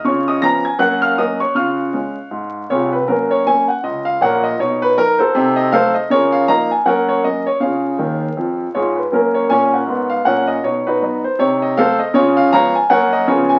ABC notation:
X:1
M:4/4
L:1/8
Q:"Swing" 1/4=159
K:F#
V:1 name="Grand piano"
[cc'] [dd'] [aa'] [gg'] [ff'] [ee'] [dd'] [cc'] | [ec'e']6 [EGc] B | [CFA] c [cg] f d e [Acf] d | c B A [F=A^B]2 _e [A=c^e] _e |
[GAc] e [dea] g [Acf] c d c | [Gce]6 [EGc] B | [CFA] c [cg] [Acf]2 e [Acf] d | c [DFB]2 ^B c _e [=A=c^e] _e |
[EGc] e [cea] g [Acf] d [EGc] g |]
V:2 name="Grand piano" clef=bass
[C,E]2 [E,B,C]2 [F,,A,]2 [F,A,C]2 | [C,E]2 [G,C]2 G,,2 [^B,,,^B,,]2 | [F,,A,]2 [F,A,C]2 C,,2 [A,,,A,,]2 | [B,,D]2 [F,D]2 [=C,_E]2 [_G,=A,E]2 |
[C,E]2 [E,A,D]2 [F,,A,]2 [F,A,C]2 | [C,E]2 [D,,D,]2 [E,,E,]2 [G,,G,]2 | [F,,A,]2 [A,,C]2 [G,,B,]2 [A,,C]2 | [B,,D]2 [F,B,D]2 [=C,_E]2 [_G,=A,=C]2 |
C,2 [E,G,B,]2 [F,,F,A,C]2 [C,E,B,C]2 |]